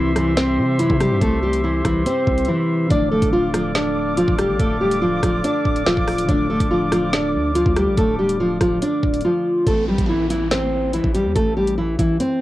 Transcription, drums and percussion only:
0.16 cross-stick, closed hi-hat
0.37 snare, closed hi-hat
0.79 closed hi-hat
0.90 kick
1.00 cross-stick, closed hi-hat
1.22 kick, closed hi-hat
1.53 closed hi-hat
1.85 kick, cross-stick, closed hi-hat
2.06 closed hi-hat
2.27 kick
2.38 closed hi-hat
2.45 closed hi-hat
2.90 kick, closed hi-hat
3.22 kick, closed hi-hat
3.54 cross-stick, closed hi-hat
3.75 snare, closed hi-hat
4.17 closed hi-hat
4.28 kick
4.38 cross-stick, closed hi-hat
4.60 kick, closed hi-hat
4.91 closed hi-hat
5.23 kick, cross-stick, closed hi-hat
5.44 closed hi-hat
5.65 kick
5.76 closed hi-hat
5.86 snare
5.97 kick
6.08 cross-stick, open hi-hat
6.18 closed hi-hat
6.29 kick, closed hi-hat
6.60 kick, closed hi-hat
6.92 cross-stick, closed hi-hat
7.13 snare, closed hi-hat
7.55 closed hi-hat
7.66 kick
7.76 cross-stick, closed hi-hat
7.97 kick, closed hi-hat
8.29 closed hi-hat
8.61 kick, cross-stick, closed hi-hat
8.82 closed hi-hat
9.03 kick
9.14 closed hi-hat
9.21 closed hi-hat
9.67 kick, closed hi-hat
9.98 kick, closed hi-hat
10.30 closed hi-hat
10.51 snare, closed hi-hat
10.93 closed hi-hat
11.04 kick
11.15 closed hi-hat
11.36 kick, closed hi-hat
11.67 closed hi-hat
11.99 kick, closed hi-hat
12.20 closed hi-hat

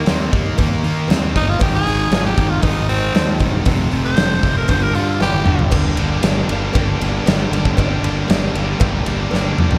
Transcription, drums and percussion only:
0.06 snare, open hi-hat, cowbell
0.33 kick, open hi-hat
0.58 kick, open hi-hat, cowbell
0.84 open hi-hat
1.08 snare, open hi-hat, cowbell
1.36 kick, open hi-hat
1.60 kick, open hi-hat, cowbell
1.87 open hi-hat
2.12 snare, open hi-hat, cowbell
2.37 kick, open hi-hat
2.63 kick, open hi-hat, cowbell
2.89 open hi-hat
3.15 snare, open hi-hat, cowbell
3.40 kick, open hi-hat
3.65 kick, open hi-hat, cowbell
3.91 open hi-hat
4.17 snare, open hi-hat, cowbell
4.43 kick, open hi-hat
4.68 kick, open hi-hat, cowbell
4.95 open hi-hat
5.20 snare, cowbell
5.33 mid tom
5.46 mid tom
5.59 floor tom
5.71 kick, crash, cowbell
5.97 ride
6.23 snare, ride, cowbell
6.49 ride
6.73 kick, ride, cowbell
7.01 ride
7.26 snare, ride, cowbell
7.53 ride
7.65 kick
7.77 kick, ride, cowbell
8.04 ride
8.28 snare, ride, cowbell
8.55 ride
8.80 kick, ride, cowbell
9.06 ride
9.31 snare, cowbell
9.58 mid tom
9.71 floor tom

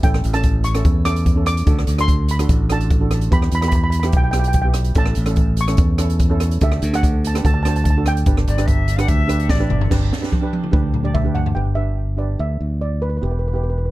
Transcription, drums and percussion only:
0.03 kick, closed hi-hat
0.14 cross-stick
0.24 closed hi-hat
0.34 cross-stick, closed hi-hat
0.43 kick, closed hi-hat
0.64 closed hi-hat
0.75 cross-stick, closed hi-hat
0.85 kick, closed hi-hat
1.05 cross-stick, closed hi-hat
1.16 closed hi-hat
1.26 kick, closed hi-hat
1.46 cross-stick, closed hi-hat
1.57 closed hi-hat
1.67 kick, closed hi-hat
1.79 cross-stick
1.87 closed hi-hat
1.98 cross-stick, closed hi-hat
2.08 kick, closed hi-hat
2.28 closed hi-hat
2.39 cross-stick, closed hi-hat
2.49 kick, closed hi-hat
2.70 cross-stick, closed hi-hat
2.81 closed hi-hat
2.90 kick, closed hi-hat
3.11 cross-stick, closed hi-hat
3.21 closed hi-hat
3.32 kick, closed hi-hat
3.42 cross-stick
3.51 closed hi-hat
3.62 cross-stick, closed hi-hat
3.72 kick, closed hi-hat
3.92 closed hi-hat
4.03 cross-stick, closed hi-hat
4.12 kick, closed hi-hat
4.33 cross-stick, closed hi-hat
4.44 closed hi-hat
4.53 kick, closed hi-hat
4.74 cross-stick, closed hi-hat
4.84 closed hi-hat
4.95 kick, closed hi-hat
5.06 cross-stick
5.15 closed hi-hat
5.26 cross-stick, closed hi-hat
5.36 kick, closed hi-hat
5.57 closed hi-hat
5.68 cross-stick, closed hi-hat
5.77 kick, closed hi-hat
5.98 cross-stick, closed hi-hat
6.10 closed hi-hat
6.19 kick, closed hi-hat
6.40 cross-stick, closed hi-hat
6.51 closed hi-hat
6.61 kick, closed hi-hat
6.72 cross-stick
6.82 closed hi-hat
6.94 cross-stick, closed hi-hat
7.03 kick, closed hi-hat
7.24 closed hi-hat
7.35 cross-stick, closed hi-hat
7.45 kick, closed hi-hat
7.65 cross-stick, closed hi-hat
7.76 closed hi-hat
7.85 kick, closed hi-hat
8.06 cross-stick, closed hi-hat
8.17 closed hi-hat
8.26 kick, closed hi-hat
8.37 cross-stick
8.47 closed hi-hat
8.58 cross-stick, closed hi-hat
8.68 kick, closed hi-hat
8.88 closed hi-hat
8.99 cross-stick, closed hi-hat
9.08 kick, closed hi-hat
9.29 cross-stick, closed hi-hat
9.40 closed hi-hat
9.49 kick, snare
9.70 mid tom
9.81 floor tom
9.91 kick, snare, crash
10.13 snare
10.24 snare
10.32 kick, high tom
10.53 high tom
10.63 mid tom
10.73 kick, mid tom
10.94 mid tom
11.05 mid tom
11.15 kick, mid tom
11.35 floor tom
11.46 floor tom

